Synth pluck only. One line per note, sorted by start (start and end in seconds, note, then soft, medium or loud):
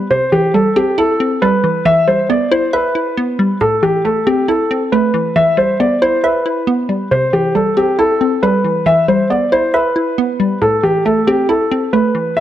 0.00 0.10 G3 medium
0.00 0.10 B3 loud
0.00 0.11 E4 medium
0.00 0.11 E5 medium
0.11 1.20 C3 medium
0.33 1.42 E3 medium
0.54 1.41 G3 medium
0.76 1.19 C4 loud
0.98 1.86 E4 medium
1.20 1.86 C4 medium
1.42 1.86 G3 medium
1.64 1.84 E3 medium
1.85 2.95 E3 medium
2.08 3.17 G3 medium
2.30 3.16 B3 medium
2.52 2.94 E4 loud
2.73 3.61 E5 medium
2.95 3.61 E4 medium
3.17 3.61 B3 medium
3.39 3.61 G3 medium
3.61 4.70 A2 medium
3.83 4.92 E3 medium
4.05 4.91 A3 medium
4.27 4.70 C4 loud
4.48 5.36 E4 medium
4.71 5.36 C4 medium
4.92 5.36 A3 medium
5.14 5.35 E3 medium
5.36 6.45 E3 medium
5.57 6.67 G3 medium
5.80 6.66 B3 medium
6.02 6.44 E4 medium
6.24 7.11 E5 medium
6.46 7.11 E4 medium
6.67 7.11 B3 medium
6.89 7.11 G3 medium
7.12 8.21 C3 medium
7.33 8.43 E3 medium
7.55 8.42 G3 medium
7.77 8.20 C4 loud
7.99 8.86 E4 medium
8.21 8.86 C4 medium
8.43 8.87 G3 medium
8.64 8.85 E3 medium
8.86 9.96 E3 medium
9.08 10.18 G3 medium
9.30 10.17 B3 medium
9.52 9.95 E4 loud
9.74 10.62 E5 medium
9.96 10.62 E4 medium
10.18 10.62 B3 medium
10.40 10.62 G3 medium
10.62 11.71 A2 medium
10.83 11.93 E3 medium
11.06 11.92 A3 medium
11.27 11.70 C4 loud
11.49 12.37 E4 medium
11.72 12.37 C4 medium
11.93 12.37 A3 medium
12.15 12.37 E3 medium